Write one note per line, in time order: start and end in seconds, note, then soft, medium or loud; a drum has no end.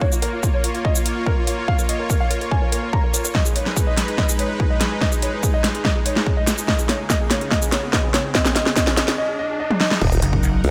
0.00 3.31 A#3 medium
0.00 3.31 F4 medium
0.00 0.08 C#5 loud
0.00 3.31 C#5 medium
0.00 kick medium
0.12 0.18 F4 medium
0.12 shaker medium
0.22 0.29 A#4 medium
0.22 closed hi-hat medium
0.33 0.39 F4 medium
0.43 0.50 F4 medium
0.43 kick loud
0.43 shaker soft
0.54 0.60 C#5 loud
0.64 0.70 F4 medium
0.64 closed hi-hat medium
0.75 0.81 F4 medium
0.75 closed hi-hat soft
0.85 0.91 D#5 medium
0.85 kick medium
0.95 1.02 F4 medium
0.95 shaker medium
1.05 1.12 F4 medium
1.05 closed hi-hat medium
1.16 1.22 F4 medium
1.26 1.33 A#4 medium
1.26 kick medium
1.37 1.43 F4 medium
1.47 1.54 F4 medium
1.47 closed hi-hat medium
1.58 1.64 F4 medium
1.68 1.75 F5 loud
1.68 kick medium
1.79 1.85 A#4 medium
1.79 shaker medium
1.89 1.95 D#5 medium
1.89 closed hi-hat medium
2.00 2.06 A#4 medium
2.10 2.16 A#4 medium
2.10 kick loud
2.10 shaker medium
2.20 2.27 F5 medium
2.31 2.37 A#4 medium
2.31 closed hi-hat medium
2.41 2.48 A#4 medium
2.41 closed hi-hat soft
2.51 2.58 G#5 medium
2.51 kick loud
2.62 2.68 A#4 medium
2.72 2.79 A#4 medium
2.72 closed hi-hat medium
2.83 2.89 A#4 medium
2.93 3.00 A#5 medium
2.93 kick loud
3.04 3.10 A#4 medium
3.14 3.20 A#4 medium
3.14 closed hi-hat medium
3.14 shaker medium
3.25 3.31 A#4 medium
3.25 shaker medium
3.35 9.14 G#3 medium
3.35 9.14 D#4 medium
3.35 6.65 B4 medium
3.35 3.41 D#5 medium
3.35 kick loud
3.35 snare soft
3.35 riser medium
3.45 3.52 G#4 medium
3.45 shaker medium
3.56 3.62 C#5 medium
3.56 closed hi-hat medium
3.66 3.72 G#4 medium
3.66 snare soft
3.76 3.83 G#4 medium
3.76 kick loud
3.76 shaker medium
3.87 3.93 D#5 medium
3.97 4.04 G#4 medium
3.97 snare medium
3.97 closed hi-hat medium
4.08 4.14 G#4 medium
4.08 closed hi-hat soft
4.18 4.25 D#5 medium
4.18 kick loud
4.18 snare soft
4.29 4.35 G#4 medium
4.29 shaker medium
4.39 4.45 C#5 medium
4.39 closed hi-hat medium
4.50 4.56 G#4 medium
4.60 4.66 G#4 medium
4.60 kick loud
4.70 4.77 D#5 medium
4.81 4.87 G#4 medium
4.81 snare medium
4.81 closed hi-hat medium
4.91 4.97 G#4 medium
5.01 5.08 D#5 loud
5.01 kick medium
5.01 snare medium
5.12 5.18 G#4 medium
5.12 shaker medium
5.22 5.29 C#5 medium
5.22 closed hi-hat medium
5.33 5.39 G#4 medium
5.43 5.50 G#4 medium
5.43 kick loud
5.43 shaker medium
5.54 5.60 D#5 medium
5.64 5.70 G#4 medium
5.64 snare medium
5.64 closed hi-hat medium
5.75 5.81 G#4 medium
5.75 closed hi-hat soft
5.85 5.91 D#5 medium
5.85 kick loud
5.85 snare medium
5.96 6.02 G#4 medium
6.06 6.12 C#5 medium
6.06 closed hi-hat medium
6.16 6.22 G#4 medium
6.16 snare medium
6.26 6.33 G#4 medium
6.26 kick loud
6.37 6.43 D#5 medium
6.47 6.54 G#4 medium
6.47 snare medium
6.47 closed hi-hat medium
6.47 shaker medium
6.58 6.64 G#4 medium
6.58 shaker medium
6.68 9.16 C#3 medium
6.68 6.75 D#5 loud
6.68 kick loud
6.68 snare medium
6.79 6.85 G#4 medium
6.79 shaker medium
6.89 6.95 C#5 medium
6.89 snare medium
6.89 closed hi-hat medium
7.00 7.06 G#4 medium
7.10 7.16 D#5 loud
7.10 kick loud
7.10 snare medium
7.10 shaker medium
7.21 7.27 G#4 medium
7.31 7.37 C#5 medium
7.31 snare medium
7.31 closed hi-hat medium
7.41 7.48 G#4 medium
7.41 closed hi-hat soft
7.51 7.58 D#5 loud
7.51 kick loud
7.51 snare medium
7.62 7.68 G#4 medium
7.62 shaker medium
7.72 7.79 C#5 medium
7.72 snare medium
7.72 closed hi-hat medium
7.83 7.89 G#4 medium
7.93 8.00 D#5 loud
7.93 kick loud
7.93 snare medium
8.04 8.10 G#4 medium
8.14 8.20 C#5 loud
8.14 snare medium
8.14 closed hi-hat medium
8.24 8.31 G#4 medium
8.35 8.41 D#5 loud
8.35 kick loud
8.35 snare medium
8.45 8.52 G#4 medium
8.45 snare medium
8.45 shaker medium
8.56 8.62 D#5 loud
8.56 snare medium
8.56 closed hi-hat medium
8.66 8.72 G#4 medium
8.66 snare medium
8.76 8.83 D#5 loud
8.76 kick loud
8.76 snare medium
8.76 shaker medium
8.87 8.93 G#4 medium
8.87 snare medium
8.97 9.04 D#5 loud
8.97 snare medium
8.97 closed hi-hat medium
9.08 9.14 G#4 medium
9.08 snare medium
9.08 closed hi-hat soft
9.18 9.25 D#5 loud
9.29 9.35 G#4 medium
9.39 9.46 D#5 loud
9.50 9.56 G#4 medium
9.60 9.66 D#5 loud
9.71 9.77 G#4 medium
9.71 high tom medium
9.81 9.87 D#5 loud
9.81 snare medium
9.91 9.98 G#4 medium
9.91 snare medium
10.01 10.21 D#1 loud
10.01 10.71 D#4 medium
10.01 10.71 A#4 medium
10.01 10.71 F#5 medium
10.01 kick loud
10.01 crash loud
10.01 sub drop medium
10.12 shaker medium
10.22 10.62 F#1 loud
10.22 closed hi-hat medium
10.33 kick loud
10.43 shaker soft
10.64 10.71 C#2 medium
10.64 open hi-hat medium